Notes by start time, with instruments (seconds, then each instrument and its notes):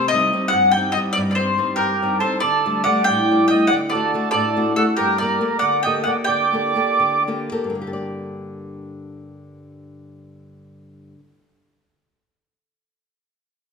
Already playing: nylon-string guitar C3
0.08 mandolin D#5
0.13 nylon-string guitar G3 C4 D#4
0.33 nylon-string guitar G3 C4 D#4
0.48 mandolin F#5
0.53 nylon-string guitar G2
0.71 mandolin G5
0.76 nylon-string guitar G3 C4 D#4
0.92 mandolin D#5
0.97 nylon-string guitar G3 C4 D#4
1.13 mandolin D5
1.18 nylon-string guitar G2
1.31 mandolin D5
1.35 mandolin C5
1.40 nylon-string guitar G3 C4 D#4
1.58 nylon-string guitar G3 C4 D#4
1.75 nylon-string guitar G2, accordion G4, mandolin A#4
2.02 nylon-string guitar G3 C4 D#4
2.19 accordion A4, mandolin C5
2.24 nylon-string guitar G3 C4 D#4
2.40 nylon-string guitar D3, accordion A4, mandolin D5
2.66 nylon-string guitar G3 A3 D4
2.84 nylon-string guitar G3 A3 D4, accordion D5, mandolin F#5
3.04 accordion D5, mandolin G5
3.09 nylon-string guitar A2
3.31 nylon-string guitar G3 A3 D4
3.48 accordion D#5, mandolin G5
3.52 nylon-string guitar G3 A3 D4
3.67 accordion D5, mandolin F#5
3.73 nylon-string guitar D3
3.90 accordion A4, mandolin D5
3.94 nylon-string guitar A3 D4 F#4
4.14 nylon-string guitar A3 D4 F#4
4.31 nylon-string guitar A2, accordion A4, mandolin D5
4.56 nylon-string guitar A3 D4 F#4
4.76 nylon-string guitar A3 D4 F#4, accordion F#4, mandolin A4
4.96 nylon-string guitar G2, accordion G4, mandolin A#4
5.18 nylon-string guitar A#3, accordion A#4, mandolin D5
5.22 nylon-string guitar G4 A#4
5.41 nylon-string guitar A#3 G4 A4
5.59 nylon-string guitar D3, accordion D5, mandolin F#5
5.83 nylon-string guitar A#3, accordion D#5, mandolin G5
5.87 nylon-string guitar G4 A4
6.04 nylon-string guitar A#3 A4, accordion D5, mandolin F#5
6.08 nylon-string guitar G4
6.24 nylon-string guitar D3, accordion D5, mandolin G5
6.53 nylon-string guitar A#3 G4 A4
6.76 nylon-string guitar A#3 G4 A4
7.00 nylon-string guitar D3
7.27 nylon-string guitar A#3 G4 A4 G5
7.52 nylon-string guitar A#3 G4 A4 A#4
7.64 nylon-string guitar G2
7.70 nylon-string guitar D3
7.75 nylon-string guitar A#3
7.82 nylon-string guitar G4
7.87 nylon-string guitar A4
7.93 nylon-string guitar D5